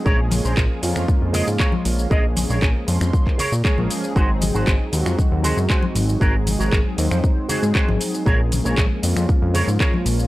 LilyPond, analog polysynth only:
\new Staff \with { instrumentName = "Analog polysynth" } { \time 4/4 \key bes \minor \tempo 4 = 117 <f aes bes des' aes'>4. <f aes bes des' f'>2~ <f aes bes des' f'>8 | <f aes bes des' aes'>4. <f aes bes des' c'''>4 r8 <f aes bes des' aes'>16 <f aes bes des' aes'>8. | <ges aes c' ees' aes'>4. <ges aes c' ees' ges'>2~ <ges aes c' ees' ges'>8 | <ges aes c' ees' aes'>4. <ges aes c' ees' c''>4 <ges aes c' ees' aes'>4. |
<f aes bes des' aes'>4. <f aes bes des' f'>2~ <f aes bes des' f'>8 | }